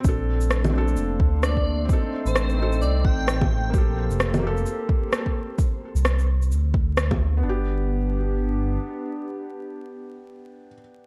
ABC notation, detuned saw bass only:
X:1
M:4/4
L:1/16
Q:"Swing 16ths" 1/4=130
K:Gm
V:1 name="Detuned saw bass" clef=bass
B,,,8 F,,,2 D,,6 | z3 A,,,4- A,,, C,,2 A,,,6 | B,,,3 F,,,4- F,,, z8 | z3 C,,4- C,, D,,8 |
G,,,12 z4 | z16 |]